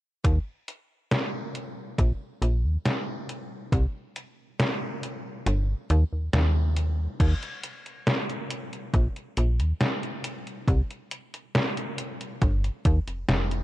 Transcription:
0.24 0.39 D#2 loud
0.24 kick loud
0.24 closed hi-hat medium
0.68 closed hi-hat medium
1.11 snare loud
1.11 closed hi-hat medium
1.55 closed hi-hat medium
1.98 2.13 A#1 loud
1.98 kick loud
1.98 closed hi-hat medium
2.42 2.66 A#1 medium
2.42 closed hi-hat medium
2.64 2.78 D#2 medium
2.86 snare loud
2.86 closed hi-hat medium
3.29 closed hi-hat medium
3.72 3.87 C2 loud
3.72 kick loud
3.72 closed hi-hat medium
4.16 closed hi-hat medium
4.60 snare loud
4.60 closed hi-hat medium
5.03 closed hi-hat medium
5.46 5.74 G1 medium
5.46 closed hi-hat medium
5.90 6.04 D#2 loud
5.90 closed hi-hat medium
6.13 6.29 D#2 soft
6.33 7.08 D#2 medium
6.33 snare loud
6.33 closed hi-hat medium
6.76 closed hi-hat medium
7.20 7.34 D#2 loud
7.20 kick loud
7.20 closed hi-hat medium
7.20 crash medium
7.43 closed hi-hat soft
7.63 closed hi-hat medium
7.86 closed hi-hat soft
8.07 snare loud
8.07 closed hi-hat medium
8.30 closed hi-hat soft
8.50 closed hi-hat medium
8.73 closed hi-hat soft
8.94 9.08 A#1 loud
8.94 kick loud
8.94 closed hi-hat medium
9.16 closed hi-hat soft
9.37 9.61 A#1 medium
9.37 closed hi-hat medium
9.60 9.73 D#2 medium
9.60 closed hi-hat soft
9.81 snare loud
9.81 closed hi-hat medium
10.03 closed hi-hat soft
10.24 closed hi-hat medium
10.47 closed hi-hat soft
10.68 10.82 C2 loud
10.68 kick loud
10.68 closed hi-hat medium
10.91 closed hi-hat soft
11.11 closed hi-hat medium
11.34 closed hi-hat soft
11.55 snare loud
11.55 closed hi-hat medium
11.77 closed hi-hat soft
11.98 closed hi-hat medium
12.21 closed hi-hat soft
12.42 12.70 G1 medium
12.42 kick loud
12.42 closed hi-hat medium
12.64 closed hi-hat soft
12.85 12.99 D#2 loud
12.85 kick loud
12.85 closed hi-hat medium
13.07 13.25 F1 soft
13.07 closed hi-hat soft
13.29 13.63 F1 medium
13.29 snare loud
13.29 closed hi-hat medium
13.51 closed hi-hat soft

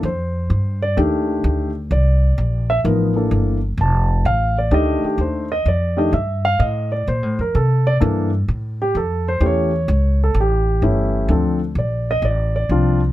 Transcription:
0.03 0.49 F2 medium
0.03 0.79 C5 medium
0.50 0.95 G2 medium
0.82 0.97 D5 medium
0.97 1.43 D#2 medium
0.97 1.69 D#3 medium
0.97 1.69 A3 medium
0.97 1.69 D4 medium
0.97 1.69 G4 medium
1.44 1.89 D2 medium
1.91 2.36 C2 medium
1.91 2.66 D5 medium
2.38 2.83 A#1 medium
2.70 2.79 E5 medium
2.84 3.30 A1 medium
2.84 3.13 F3 medium
2.84 3.13 B3 soft
2.84 3.13 D#4 soft
2.84 3.13 A#4 medium
3.16 3.56 E3 medium
3.16 3.57 A#3 medium
3.16 3.57 D4 soft
3.16 3.57 A4 medium
3.31 3.77 G1 medium
3.78 4.23 F1 medium
3.78 4.23 A5 medium
4.25 4.71 A1 medium
4.25 4.56 F5 medium
4.58 4.72 D5 medium
4.71 5.01 D2 medium
4.71 5.44 D#3 medium
4.71 5.44 A3 medium
4.71 5.44 D4 medium
4.71 5.04 G4 medium
4.71 5.04 D#5 medium
5.03 5.19 G4 medium
5.03 muted upright bass stroke soft
5.18 5.64 D#2 medium
5.18 5.51 C5 medium
5.52 5.66 D#5 medium
5.66 6.11 F2 medium
5.66 5.98 D5 medium
5.97 6.11 D#3 medium
5.97 6.11 A3 medium
5.97 6.11 D4 medium
5.97 6.11 G4 medium
5.97 6.13 D#5 medium
6.13 6.58 G2 medium
6.13 6.44 E5 medium
6.45 6.59 F5 loud
6.59 7.05 A2 medium
6.59 6.90 D#5 medium
6.92 7.06 D5 medium
7.08 7.23 A#2 medium
7.08 7.38 C5 medium
7.23 7.38 A2 medium
7.39 7.53 F2 medium
7.39 7.54 A#4 medium
7.55 8.00 C3 medium
7.55 7.85 A4 medium
7.87 7.95 D5 medium
8.00 8.47 G2 medium
8.00 8.29 E3 medium
8.00 8.29 A#3 medium
8.00 8.29 D4 medium
8.00 8.29 A4 medium
8.48 8.94 A2 medium
8.82 8.95 G4 medium
8.95 9.40 F2 medium
8.95 9.27 A4 medium
9.28 9.42 C5 medium
9.41 9.87 E2 medium
9.41 9.70 E3 medium
9.41 9.70 A3 medium
9.41 9.70 C#4 medium
9.41 9.70 G4 medium
9.46 10.19 C#5 medium
9.88 10.34 C#2 medium
10.24 10.37 A4 medium
10.34 10.81 A1 medium
10.40 11.28 G4 medium
10.82 11.28 G1 medium
10.82 11.29 E3 medium
10.82 11.30 A3 medium
10.82 11.30 C#4 medium
10.82 11.30 E4 medium
11.28 11.75 D2 medium
11.28 11.59 F3 medium
11.28 11.58 C4 medium
11.28 11.59 D4 medium
11.28 11.59 A4 medium
11.75 12.22 A#1 medium
11.75 12.08 D5 medium
12.11 12.24 D#5 medium
12.22 12.68 A1 medium
12.22 12.54 D5 medium
12.56 12.99 D5 medium
12.69 13.13 C2 medium
12.69 12.99 F3 medium
12.69 12.99 C4 medium
12.69 12.99 D4 medium
12.69 13.00 F4 medium

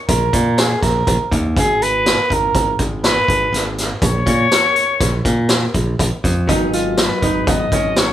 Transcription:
0.08 0.28 A#1 medium
0.08 0.59 A#4 medium
0.08 kick medium
0.08 closed hi-hat medium
0.33 0.73 A#2 medium
0.33 kick medium
0.33 closed hi-hat medium
0.58 0.83 G#4 medium
0.58 snare loud
0.58 closed hi-hat medium
0.82 1.02 A#1 medium
0.82 1.31 A#4 medium
0.82 kick medium
0.82 snare soft
0.82 closed hi-hat medium
1.07 1.17 A#1 medium
1.07 kick medium
1.07 closed hi-hat medium
1.31 1.58 D#2 medium
1.31 kick medium
1.31 closed hi-hat medium
1.56 2.16 G#1 medium
1.56 1.84 G#4 medium
1.56 kick medium
1.56 closed hi-hat medium
1.82 2.35 B4 loud
1.82 closed hi-hat medium
2.06 snare loud
2.06 closed hi-hat medium
2.30 2.50 G#1 medium
2.30 2.81 A#4 medium
2.30 kick medium
2.30 closed hi-hat soft
2.55 2.74 G#1 medium
2.55 kick medium
2.55 closed hi-hat medium
2.79 3.19 G#1 medium
2.79 kick medium
2.79 closed hi-hat medium
3.03 3.73 B4 loud
3.03 snare loud
3.03 closed hi-hat medium
3.28 3.48 G#1 medium
3.28 kick medium
3.28 closed hi-hat medium
3.52 3.92 G#1 medium
3.52 snare soft
3.52 closed hi-hat medium
3.78 snare soft
3.78 closed hi-hat medium
4.02 4.22 A#1 medium
4.02 5.46 C#5 loud
4.02 kick medium
4.02 closed hi-hat medium
4.26 4.46 A#2 medium
4.26 kick medium
4.26 closed hi-hat medium
4.51 snare medium
4.51 closed hi-hat medium
4.76 closed hi-hat medium
5.00 5.20 A#1 medium
5.00 kick medium
5.00 snare soft
5.00 closed hi-hat medium
5.25 5.65 A#2 medium
5.25 kick medium
5.25 closed hi-hat medium
5.49 snare loud
5.49 closed hi-hat medium
5.74 5.94 A#1 medium
5.74 kick medium
5.74 closed hi-hat medium
5.99 6.09 A#1 medium
5.99 kick medium
5.99 closed hi-hat medium
6.24 6.50 F2 medium
6.24 kick medium
6.24 closed hi-hat medium
6.47 7.08 G#1 medium
6.47 8.13 F#3 medium
6.47 8.13 B3 medium
6.47 6.68 D#4 medium
6.47 8.13 D#4 medium
6.47 kick loud
6.47 closed hi-hat medium
6.73 7.13 F4 medium
6.73 closed hi-hat medium
6.97 7.50 B4 medium
6.97 snare loud
6.97 closed hi-hat medium
7.22 7.42 G#1 medium
7.22 7.43 D#4 medium
7.22 kick medium
7.22 closed hi-hat medium
7.47 7.67 G#1 medium
7.47 7.67 B3 medium
7.47 7.99 D#5 medium
7.47 kick medium
7.47 closed hi-hat medium
7.72 8.11 G#1 medium
7.72 8.12 C#4 medium
7.72 kick medium
7.72 closed hi-hat medium
7.96 8.13 C#5 medium
7.96 snare loud
7.96 closed hi-hat medium

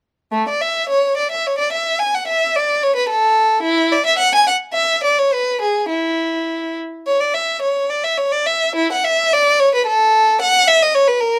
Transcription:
0.32 0.48 A3 medium
0.49 0.64 D5 soft
0.61 0.91 E5 medium
0.90 1.18 C#5 medium
1.17 1.32 D5 soft
1.31 1.46 E5 soft
1.47 1.61 C#5 medium
1.58 1.73 D5 medium
1.73 2.01 E5 medium
1.99 2.15 G#5 medium
2.15 2.29 F#5 medium
2.28 2.56 E5 medium
2.56 2.84 D5 medium
2.83 2.97 C#5 medium
2.96 3.10 B4 medium
3.09 3.63 A4 medium
3.63 3.90 E4 medium
3.92 4.06 D5 medium
4.06 4.20 E5 medium
4.19 4.33 F#5 medium
4.35 4.48 G#5 medium
4.48 4.56 F#5 medium
4.74 5.03 E5 medium
5.04 5.18 D5 medium
5.19 5.33 C#5 medium
5.34 5.62 B4 medium
5.61 5.90 G#4 medium
5.90 6.76 E4 medium
7.07 7.20 C#5 medium
7.20 7.34 D5 medium
7.34 7.62 E5 medium
7.62 7.89 C#5 medium
7.90 8.04 D5 medium
8.04 8.18 E5 medium
8.18 8.32 C#5 medium
8.32 8.46 D5 medium
8.47 8.76 E5 medium
8.76 8.90 E4 medium
8.93 9.06 F#5 medium
9.05 9.33 E5 medium
9.33 9.61 D5 medium
9.60 9.74 C#5 medium
9.75 9.88 B4 medium
9.87 10.39 A4 medium
10.42 10.67 F#5 medium
10.68 10.81 E5 medium
10.82 10.95 D#5 medium
10.95 11.08 C#5 medium
11.08 11.22 B4 medium
11.21 11.39 A#4 medium

